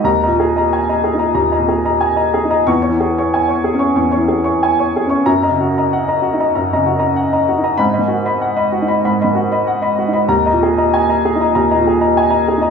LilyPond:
<<
  \new Staff \with { instrumentName = "Upright piano" } { \time 4/4 \key dis \phrygian \tempo 4 = 95 << { ais''8 r2. r8 | cis'''8 r2. r8 | ais''8 r2. r8 | b''8 r2. r8 |
ais''8 r2. r8 | } \\ { r16 <dis'' ais''>16 gis'16 <dis'' ais''>16 gis''16 <dis'' ais''>16 gis'16 <dis'' ais''>16 ais''16 <dis'' ais''>16 gis'16 <dis'' ais''>16 gis''16 <dis'' ais''>16 gis'16 <dis'' ais''>16 | r16 <cis'' cis'''>16 gis'16 <cis'' cis'''>16 gis''16 <cis'' cis'''>16 gis'16 <cis'' cis'''>16 cis'''16 <cis'' cis'''>16 gis'16 <cis'' cis'''>16 gis''16 <cis'' cis'''>16 gis'16 <cis'' cis'''>16 | r16 <dis'' ais''>16 fis'16 <dis'' ais''>16 fis''16 <dis'' ais''>16 fis'16 <dis'' ais''>16 ais''16 <dis'' ais''>16 fis'16 <dis'' ais''>16 fis''16 <dis'' ais''>16 fis'16 <dis'' ais''>16 | r16 <dis'' b''>16 fis'16 <dis'' b''>16 fis''16 <dis'' b''>16 fis'16 <dis'' b''>16 b''16 <dis'' b''>16 fis'16 <dis'' b''>16 fis''16 <dis'' b''>16 fis'16 <dis'' b''>16 |
r16 <dis'' ais''>16 gis'16 <dis'' ais''>16 gis''16 <dis'' ais''>16 gis'16 <dis'' ais''>16 ais''16 <dis'' ais''>16 gis'16 <dis'' ais''>16 gis''16 <dis'' ais''>16 gis'16 <dis'' ais''>16 | } >> }
  \new Staff \with { instrumentName = "Upright piano" } { \clef bass \time 4/4 \key dis \phrygian \tuplet 3/2 { dis,8 ais,4 r4 dis'8 dis,8 ais,4 r4 dis'8 } | \tuplet 3/2 { e,8 e4 r4 cis'8 e,8 e4 r4 cis'8 } | \tuplet 3/2 { fis,8 cis4 r4 dis'8 fis,8 cis4 r4 dis'8 } | \tuplet 3/2 { gis,8 dis4 r4 dis'8 gis,8 dis4 r4 dis'8 } |
\tuplet 3/2 { dis,8 ais,4 r4 dis'8 dis,8 ais,4 r4 dis'8 } | }
>>